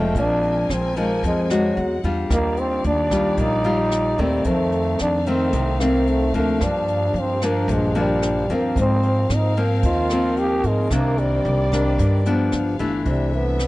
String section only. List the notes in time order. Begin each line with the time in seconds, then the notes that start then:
Already playing: C4 A4 D5 G5
0.15 A#4 G#5
1.76 G#4 F#5
2.32 G4 D5 F5
4.46 D#4 A4
6.62 D4 G4
8.76 C4 A#4 F5
10.90 C5 D5
12.52 B3 G4 F5
13.07 D4 A4 E5